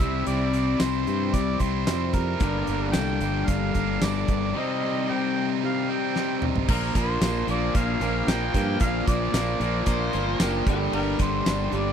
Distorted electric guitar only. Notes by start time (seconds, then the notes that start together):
0.00 C3 G3 C4 E4
0.26 C3 G3 C4 E4
0.53 G3 C4 E4
0.80 C3 G3 C4 E4
1.07 G3 C4 E4
1.60 G3 C4 E4
1.86 C3 G3 C4 E4
2.40 G2 D3 G3 A#3 D4
2.68 G3 A#3 D4
2.94 G2 D3 G3 A#3 D4
3.21 G3 A#3 D4
3.74 G3 A#3 D4
4.02 D3 G3 A#3 D4
4.54 C3 G3 C4 D#4
4.82 G3 C4 D#4
5.08 C3 G3 C4 D#4
5.34 G3 C4 D#4
5.88 G3 C4 D#4
6.15 C3 G3 C4 D#4
6.68 A#2 F3 A#3
6.95 A#2 F3 A#3
7.21 A#2 F3 A#3
7.48 A#2 F3 A#3
7.76 A#2 F3 A#3
8.01 A#2 F3 A#3
8.28 A#2 F3 A#3
8.53 A#2 F3 A#3
8.80 A#2 F3 A#3
9.05 A#2 F3 A#3
9.32 A#2 F3 A#3
9.60 A#2 F3 A#3
9.86 A#2 F3 A#3
10.13 A#2 F3 A#3
10.39 A#2 F3 A#3
10.66 G2 D3 G3
10.92 G2 D3 G3
11.18 G2 D3 G3
11.46 G2 D3 G3
11.71 G2 D3 G3